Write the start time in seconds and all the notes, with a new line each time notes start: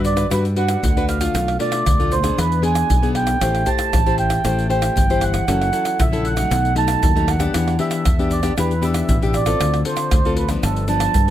Already playing: G2 D3 D4 F#4 B4
0.05 D5, pandeiro, shaker
0.16 D4 F#4 B4, pandeiro, tamborim, shaker
0.30 G2 G3 D4 F#4 B4, pandeiro, tamborim, shaker, surdo
0.45 pandeiro, shaker
0.56 D4 F#4 B4 F#5, pandeiro
0.68 pandeiro, tamborim, shaker
0.83 D2 D3, pandeiro, shaker, surdo
0.97 D4 F#4 B4, pandeiro, shaker
1.09 F5, pandeiro, tamborim, shaker
1.20 A3 D4 F4, pandeiro, tamborim, shaker
1.34 B1 B2, pandeiro, tamborim, shaker, surdo
1.48 pandeiro, tamborim, shaker
1.59 A3 D4 F4 D5, pandeiro
1.72 pandeiro, tamborim, shaker
1.86 D2 B2, pandeiro, tamborim, shaker, surdo
2.00 A3 D4 F4, pandeiro, shaker
2.12 C5, pandeiro, shaker
2.22 B3 D4 G#4, pandeiro, tamborim, shaker
2.37 E2 E3 B4, pandeiro, tamborim, shaker, surdo
2.52 pandeiro, shaker
2.62 B3 D4 G#4 G#5, pandeiro
2.75 pandeiro, tamborim, shaker
2.89 B1 B2, pandeiro, shaker, surdo
3.02 B3 D4 G#4, pandeiro, shaker
3.15 G5, pandeiro, tamborim
3.27 pandeiro, tamborim, shaker
3.41 A1 A3 E4 G4 C5, pandeiro, tamborim, shaker, surdo
3.55 pandeiro, tamborim, shaker
3.66 E4 G4 C5 A5, pandeiro, shaker, surdo
3.79 pandeiro, tamborim, shaker
3.93 A1 E3, pandeiro, tamborim, shaker, surdo
4.06 E4 G4 C5, pandeiro, shaker
4.18 G5, pandeiro
4.30 pandeiro, tamborim, shaker
4.44 A1 A3 E4 G4 C5, pandeiro, tamborim, shaker, surdo
4.59 pandeiro, shaker
4.69 E4 G4 C5 G5, pandeiro
4.82 pandeiro, tamborim, shaker
4.96 G1 E3, pandeiro, shaker, surdo
5.10 E4 G4 C5, pandeiro, shaker
5.21 F#5, pandeiro, tamborim, shaker
5.34 pandeiro, tamborim, shaker
5.48 F#1 F#3 C#4 E4 A4, pandeiro, tamborim, shaker, surdo
5.61 pandeiro, tamborim, shaker
5.73 C#4 E4 A4, pandeiro, shaker
5.85 pandeiro, tamborim, shaker
5.99 A#1 C#3 E5, pandeiro, tamborim, shaker, surdo
6.12 C#4 E4 A4, pandeiro, shaker
6.25 F#5, pandeiro
6.36 F#3 A3 D#4, pandeiro, tamborim, shaker
6.50 B1 B2, pandeiro, tamborim, shaker, surdo
6.65 pandeiro, shaker
6.75 F#3 A3 D#4 A5, pandeiro
6.88 pandeiro, tamborim, shaker
7.02 D#2 F#2, pandeiro, shaker, surdo
7.15 F#3 A3 D#4, pandeiro, shaker
7.28 F#5, pandeiro, tamborim, shaker
7.39 B3 D4 G4, pandeiro, tamborim, shaker
7.54 E2 E3, pandeiro, tamborim, shaker, surdo
7.68 pandeiro, tamborim, shaker
7.79 B3 D4 G4 E5, pandeiro
7.91 pandeiro, tamborim, shaker
8.05 E2, pandeiro, tamborim, shaker, surdo
8.19 B3 D4 G4, pandeiro, shaker
8.31 D5, pandeiro, shaker
8.43 B3 D4 G4, pandeiro, tamborim, shaker
8.57 E2 E3 B3 D4 G4 B4, pandeiro, tamborim, shaker, surdo
8.71 pandeiro, shaker
8.82 B3 D4 G4 E5, pandeiro, shaker
8.94 pandeiro, tamborim, shaker
9.08 A1 B2, pandeiro, shaker, surdo
9.22 B3 D4 G4, pandeiro, shaker
9.34 D5, pandeiro, tamborim, shaker
9.46 C4 F4 A4, pandeiro, tamborim, shaker
9.60 D2 D3, pandeiro, tamborim, shaker, surdo
9.74 pandeiro, tamborim, shaker
9.85 C4 F4 A4 C5, pandeiro
9.97 pandeiro, tamborim, shaker
10.11 D2 A2, pandeiro, tamborim, shaker, surdo
10.25 C4 F4 A4, pandeiro, shaker
10.37 B4, pandeiro
10.49 F3 B3 D4, pandeiro, tamborim, shaker
10.63 G1 G2 A4, pandeiro, tamborim, shaker, surdo
10.76 pandeiro, shaker
10.88 F3 B3 D4 A5, pandeiro, shaker
11.00 pandeiro, tamborim, shaker
11.14 G2 D3, pandeiro, shaker, surdo